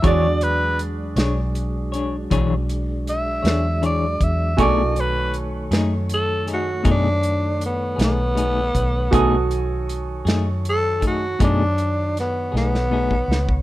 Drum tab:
HH |x-x-x-x-x-x-x-x-x-x-x-x-|x-x-x-x-x-x-x-x-x-x-x-x-|x-x-x-x-x-x-x-x-x-------|
SD |------o-----------o-----|------o-----------o-----|------o---------o-oo--o-|
BD |o-----------o---------o-|o-----------o---------o-|o---------o-o--------o-o|